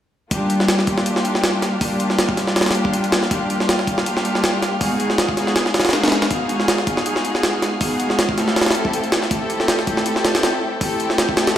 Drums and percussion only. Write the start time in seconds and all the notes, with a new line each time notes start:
0.31 kick, closed hi-hat
0.50 closed hi-hat
0.60 snare
0.68 snare, closed hi-hat
0.79 snare
0.87 kick, closed hi-hat
0.98 snare
1.06 closed hi-hat
1.16 snare
1.25 closed hi-hat
1.35 snare
1.44 snare, closed hi-hat
1.62 snare, closed hi-hat
1.81 kick, open hi-hat
2.00 closed hi-hat
2.10 snare
2.19 snare, closed hi-hat
2.29 kick
2.37 snare, closed hi-hat
2.47 snare
2.56 snare, closed hi-hat
2.61 snare, closed hi-hat
2.66 snare, closed hi-hat
2.71 snare, closed hi-hat
2.75 closed hi-hat
2.85 kick
2.94 closed hi-hat
3.04 closed hi-hat
3.12 snare, closed hi-hat
3.23 snare
3.31 kick, closed hi-hat
3.50 closed hi-hat
3.60 snare
3.69 snare, closed hi-hat
3.79 snare
3.87 kick, closed hi-hat
3.98 snare
4.06 closed hi-hat
4.17 snare
4.25 closed hi-hat
4.35 snare
4.44 snare, closed hi-hat
4.62 snare, closed hi-hat
4.81 kick, open hi-hat
5.00 closed hi-hat
5.10 snare
5.18 snare, closed hi-hat
5.29 kick
5.37 snare, closed hi-hat
5.47 snare
5.56 snare, closed hi-hat
5.66 snare
5.74 snare, closed hi-hat
5.80 snare, closed hi-hat
5.85 snare, closed hi-hat
5.89 snare, closed hi-hat
5.93 snare, closed hi-hat
6.04 snare, closed hi-hat
6.08 snare, closed hi-hat
6.12 snare, closed hi-hat
6.22 snare, closed hi-hat
6.31 kick, closed hi-hat
6.49 closed hi-hat
6.60 snare
6.68 snare, closed hi-hat
6.78 snare
6.87 kick, closed hi-hat
6.97 snare
7.06 closed hi-hat
7.16 snare
7.25 closed hi-hat
7.35 snare
7.43 snare, closed hi-hat
7.62 snare, closed hi-hat
7.81 kick, open hi-hat
8.00 closed hi-hat
8.10 snare
8.19 snare, closed hi-hat
8.29 kick
8.38 snare, closed hi-hat
8.48 snare
8.56 snare, closed hi-hat
8.61 snare, closed hi-hat
8.66 snare, closed hi-hat
8.71 snare, closed hi-hat
8.75 closed hi-hat
8.85 kick
8.93 closed hi-hat
9.04 closed hi-hat
9.12 snare, closed hi-hat
9.23 snare
9.31 kick, closed hi-hat
9.50 closed hi-hat
9.60 snare
9.68 snare, closed hi-hat
9.79 snare
9.87 kick, closed hi-hat
9.97 snare
10.06 closed hi-hat
10.16 snare
10.25 snare, closed hi-hat
10.35 snare, closed hi-hat
10.43 snare, closed hi-hat
10.81 kick, open hi-hat
11.00 closed hi-hat
11.10 snare
11.18 snare, closed hi-hat
11.29 kick
11.37 snare, closed hi-hat
11.47 snare, closed hi-hat